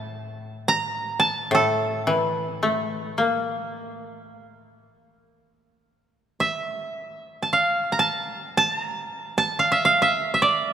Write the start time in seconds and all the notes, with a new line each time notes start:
Already playing: A2 E4 A5
0.68 A#5
1.20 A5
1.51 A2 A4
2.07 E3
2.63 A3
3.18 A#3
6.40 E5
7.42 A5
7.53 F5
7.92 A#5
7.99 A5
8.57 A5
8.76 A#5
9.38 A5
9.59 F5
9.72 E5
9.85 F5
10.02 E5
10.34 E5
10.42 D5